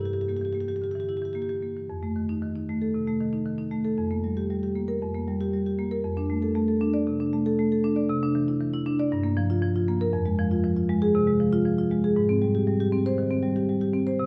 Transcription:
Already playing: G2 G4
0.01 E4
0.05 G4
0.13 E3 G4
0.21 G4
0.28 A#3 G4
0.37 G4
0.41 E3 G4
0.53 A#3 G4
0.61 G4
0.68 E3 G4
0.76 G4
0.82 D3 G4
0.91 E3 G4
1.00 G4
1.09 E4 G4
1.17 G4
1.22 E3 G4
1.33 A#3 G4
1.42 G4
1.49 E3 G4
1.63 A#3
1.76 E3
1.90 F2
2.03 A3
2.16 D#3
2.29 D#4
2.42 D#3
2.56 D#4
2.69 A3
2.82 A4
2.94 C3
3.07 A3
3.20 D#3
3.33 D#4
3.45 D#3
3.58 D#4
3.71 A3
3.84 A4
3.98 F2
4.11 A#3
4.24 G3
4.37 G4
4.50 G3
4.63 G4
4.75 A#3
4.88 A#4
5.02 F2
5.15 A#3
5.28 G3
5.41 G4
5.53 G3
5.66 G4
5.79 A#3
5.91 A#4
6.04 F2
6.17 D4
6.30 A3
6.42 A4
6.55 A3
6.68 A4
6.81 D4
6.94 D5
7.07 C3
7.20 D4
7.33 A3
7.46 A4
7.59 A3
7.72 A4
7.84 D4
7.96 D5
8.09 C3
8.23 D4
8.35 E3
8.48 E4
8.61 E3
8.73 E4
8.86 D4
8.99 D5
9.12 G2
9.23 A#3
9.37 F3
9.50 F4
9.62 F3
9.76 F4
9.88 A#3
10.01 A#4
10.13 F2
10.26 G#3
10.39 F3
10.51 F4
10.64 F3
10.76 F4
10.89 G#3
11.02 G#4
11.15 C3
11.27 G#3
11.40 F3
11.53 F4
11.65 F3
11.78 F4
11.91 G#3
12.04 G#4
12.16 G#2
12.29 C4
12.42 G3
12.55 G4
12.67 G3
12.80 G4
12.92 C4
13.06 C5
13.18 D#3
13.31 C4
13.43 G3
13.56 G4
13.69 G3
13.81 G4
13.94 C4
14.07 C5
14.19 C3

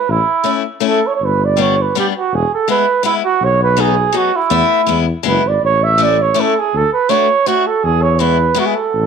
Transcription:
Already playing: B4
0.09 A1 E4
0.44 A3 C#4 E4
0.80 A3 C#4 E4
0.86 A4
1.07 C#5
1.15 C#5
1.21 G1 B4
1.44 D5
1.57 G3 B3 D4
1.61 C#5
1.81 B4
1.95 G3 B3 D4 G4
2.17 F#4
2.32 E1 G#4
2.54 A4
2.68 G#3 B3 E4 B4
3.03 G#3 B3 E4
3.24 F#4
3.41 B1 C#5
3.63 B4
3.77 F#3 B3 D#4 G#4
4.13 F#3 B3 D#4
4.17 F#4
4.36 E4
4.50 E2 A3 B3 E4
4.87 E2 G#3 B3 E4
5.23 F#1 G#3 B3 E4 B4
5.44 G#1 D5
5.62 A1 C#5
5.83 E5
5.98 A3 C#4 E4
6.02 D5
6.22 C#5
6.34 A3 C#4 E4
6.40 A4
6.58 G#4
6.74 D2 A4
6.93 B4
7.09 A3 D4 F#4 C#5
7.46 A3 D4 F#4
7.67 A4
7.83 E2 G#4
8.02 C#5
8.19 G#3 B3 E4 B4
8.55 G#3 B3 E4
8.59 F#4
8.65 G#4
8.75 A4
8.94 A1

